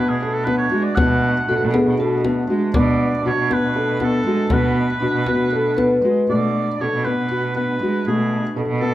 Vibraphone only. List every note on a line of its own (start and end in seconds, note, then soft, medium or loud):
1.49 1.75 A4 medium
1.73 1.99 G#4 medium
2.00 2.23 F#4 medium
2.25 2.59 D4 medium
5.00 5.27 D4 medium
5.28 5.53 F#4 medium
5.52 5.78 A4 medium
5.77 6.25 B4 medium